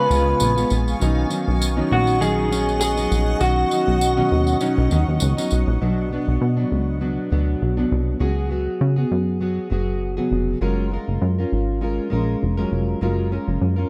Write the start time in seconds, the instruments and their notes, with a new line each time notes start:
Already playing: steel-string acoustic guitar B3 F4, ambient pad B3 F5 G#5 C#6, clean electric guitar B4
0.10 analog synth bass C#2, steel-string acoustic guitar C#3 G#3 B3 F4, tambourine
0.40 analog synth bass A#1, tambourine
0.56 steel-string acoustic guitar G#3 B3 F4, tambourine
0.70 analog synth bass A#1, tambourine
0.88 tambourine
0.99 analog synth bass B1, steel-string acoustic guitar D#3 F#3 C#4 D#4, ambient pad D#5 F#5 C#6, tambourine
1.29 steel-string acoustic guitar D#3 F#3 C#4 D#4, tambourine
1.48 analog synth bass B1
1.62 tambourine
1.77 steel-string acoustic guitar D#3 F#3 C#4 D#4
1.92 analog synth bass A#1, clean electric guitar F#4
2.07 tambourine
2.20 steel-string acoustic guitar D#3 F#3 C#4 D#4, clean electric guitar G#4, tambourine
2.51 steel-string acoustic guitar D#3 F#3 C#4 D#4, tambourine
2.69 tambourine
2.81 clean electric guitar G#4, tambourine
2.97 steel-string acoustic guitar F#3 C#4 D#4, tambourine
3.12 analog synth bass A#1, tambourine
3.40 analog synth bass B1, steel-string acoustic guitar D#3 F#3 C#4 D#4, clean electric guitar F#4, tambourine
3.71 steel-string acoustic guitar D#3 F#3 C#4 D#4, tambourine
3.88 analog synth bass B1
4.01 tambourine
4.17 steel-string acoustic guitar B2 D#3 F#3 C#4 D#4
4.32 analog synth bass D#2
4.47 tambourine
4.60 steel-string acoustic guitar B2 D#3 F#3 C#4 D#4, tambourine
4.78 analog synth bass B1
4.90 analog synth bass D#2, steel-string acoustic guitar D#3 F#3 C#4 D#4, tambourine
5.08 analog synth bass D#2
5.20 analog synth bass C#2, tambourine
5.37 steel-string acoustic guitar F#3 C#4 D#4, tambourine
5.51 analog synth bass B1, tambourine
5.67 analog synth bass A#1
5.81 analog synth bass B1, steel-string acoustic guitar B2 F#3 B3 D4
6.11 steel-string acoustic guitar B2 F#3 B3 D4
6.28 analog synth bass B1
6.41 analog synth bass B2
6.57 steel-string acoustic guitar F#3 B3 D4
6.72 analog synth bass C#2
7.00 steel-string acoustic guitar B2 F#3 B3 D4
7.30 analog synth bass D2, steel-string acoustic guitar B2 F#3 B3 D4
7.62 analog synth bass B1
7.77 steel-string acoustic guitar B2 F#3 B3 D4
7.92 analog synth bass C2
8.20 analog synth bass C#2, steel-string acoustic guitar C#3 F#3 B3 F#4 G#4
8.50 steel-string acoustic guitar F#3 B3 F#4 G#4
8.81 analog synth bass C#3
8.96 steel-string acoustic guitar B3 F#4 G#4
9.11 analog synth bass F#2
9.40 steel-string acoustic guitar F#3 B3 F#4 G#4
9.70 analog synth bass F#1, steel-string acoustic guitar F#3 B3 F#4 G#4
10.17 steel-string acoustic guitar C#3 F#3 B3 F#4 G#4
10.32 analog synth bass F1
10.61 analog synth bass F#1, steel-string acoustic guitar F#3 G#3 C#4 F4 A#4
10.91 steel-string acoustic guitar G#3 C#4 F4 A#4
11.08 analog synth bass F#1
11.22 analog synth bass F#2
11.38 steel-string acoustic guitar C#4 F4 A#4
11.52 analog synth bass G#1
11.81 steel-string acoustic guitar G#3 C#4 F4 A#4
12.10 analog synth bass A#1, steel-string acoustic guitar G#3 C#4 F4 A#4
12.43 analog synth bass F1
12.57 steel-string acoustic guitar F#3 G#3 C#4 F4 A#4
12.72 analog synth bass F1
13.01 analog synth bass F#1, steel-string acoustic guitar F#3 G#3 C#4 F4 A#4
13.31 steel-string acoustic guitar G#3 C#4 F4 A#4
13.48 analog synth bass F#1
13.61 analog synth bass F#2
13.76 steel-string acoustic guitar C#4 F4 A#4